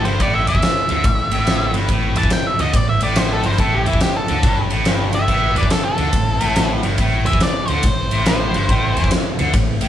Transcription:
Already playing: C4 E4 A4
0.05 G1 G2 C5, ride
0.20 A1 A2 D5, kick, ride
0.35 E5
0.47 E2 E3 E5, ride
0.55 kick
0.62 muted distorted electric guitar stroke, muted fingered electric bass stroke, snare, ride
0.76 snare
0.89 D2 D3, ride
1.04 A1 A2, kick, ride
1.31 A1 A2, ride
1.47 snare, ride
1.74 G1 G2, ride
1.88 A1 A2 A3 C4 E4, kick, ride
2.16 E2 E3 A5, ride
2.23 kick
2.30 G5, muted fingered electric bass stroke, muted distorted electric guitar stroke, snare, ride
2.47 E5
2.59 D2 D3 D#5, ride
2.73 A1 A2 D5, kick, ride
2.89 E5
3.01 A1 A2 D5, ride
3.16 C5, snare, ride
3.32 A4
3.43 G1 G2 C5, ride
3.52 snare
3.58 A1 A2 A4, kick, ride
3.75 G4
3.86 E2 E3 E4, ride
3.93 kick
4.00 G4, muted fingered electric bass stroke, muted distorted electric guitar stroke, snare, ride
4.17 A4
4.28 D2 D3, ride
4.43 G1 G2, kick, ride
4.70 A1 A2, ride
4.85 G1 G2, snare, ride
5.13 E5, ride
5.28 A1 A2 E3 A3 C4, kick, crash
5.55 E2 E3 D5, ride
5.63 kick
5.70 A4, muted fingered electric bass stroke, muted distorted electric guitar stroke, snare, ride
5.85 A4
5.98 D2 D3, ride
6.13 A1 A2, kick, ride
6.40 A1 A2, ride
6.56 snare, ride
6.83 G1 G2, ride
6.98 A1 A2, kick, ride
7.26 E2 E3 E5, ride
7.33 kick
7.40 D5, muted distorted electric guitar stroke, muted fingered electric bass stroke, snare, ride
7.68 D2 D3 C5, ride
7.83 A1 A2, kick, ride
8.11 A1 A2, ride
8.26 C5, snare, ride
8.53 G1 G2, ride
8.69 A1 A2 E3 A3 C4, kick, ride
8.96 E2 E3, ride
9.04 kick
9.11 muted distorted electric guitar stroke, muted fingered electric bass stroke, snare, ride
9.39 D2 D3, ride
9.53 A1 A2, kick, ride
9.81 A1 A2, ride

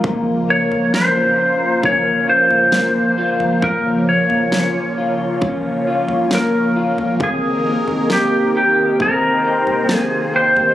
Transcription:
Already playing: F3 G#3 C4 F4 A#4
0.03 A#2 C#3 A#3 F4, kick, floor tom
0.48 A#3 C#5
0.72 floor tom
0.94 C#4 C5, snare
1.38 F4
1.82 C#4 C#5, kick, floor tom
2.28 F4 C5
2.51 floor tom
2.72 A#3, snare
3.18 F4
3.40 floor tom
3.62 A#2 A#4 C#5, kick, floor tom
4.08 A#3 C#5
4.30 floor tom
4.52 C#4, snare
4.97 F4
5.42 C#4, kick, floor tom
5.87 F4
6.08 floor tom
6.31 A#3 A#4, snare
6.76 F4
6.98 floor tom
7.20 C3 D#3 A#3 D#4 G#4 A#4, kick, floor tom
7.65 A#3
7.88 floor tom
8.10 C4 G4, snare
8.55 G4
9.00 C4 A#4 C5, kick, floor tom
9.44 G4
9.67 floor tom
9.89 A#3, snare
9.95 G#4
10.34 G4 C5
10.57 floor tom

